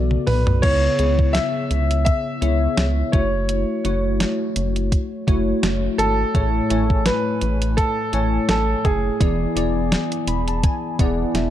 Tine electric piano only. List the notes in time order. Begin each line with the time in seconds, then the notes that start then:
Already playing: B3 F#4 A4 D5
0.63 C#3 B3 E4 G#4 C#5
0.98 B3 E4 G#4 C#5
2.41 B3 E4 G#4 C#5
3.13 A3 E4 F#4 C#5
3.84 A3 E4 F#4 C#5
5.27 A3 E4 F#4 C#5
6.34 A2 A3 E4 G#4 C#5
6.70 A3 E4 C#5 G#5
8.13 A3 E4 C#5 G#5
9.20 E3 B3 E4 G#4 D5
9.55 B3 E4 G#4 D5
10.28 B5
10.48 A5
10.64 G#5
10.99 B3 E4 G#4 D5 F#5
11.36 E5